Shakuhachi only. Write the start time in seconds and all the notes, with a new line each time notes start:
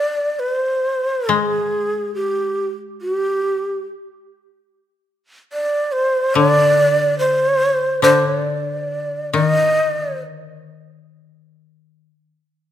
Already playing: D5
0.39 B4
0.51 C5
1.29 G#4
2.15 G4
3.02 F#4
3.14 G4
5.53 D5
5.92 C5
6.35 D5
7.19 C5
8.03 C5
8.26 C#5
8.41 D5
9.33 D#5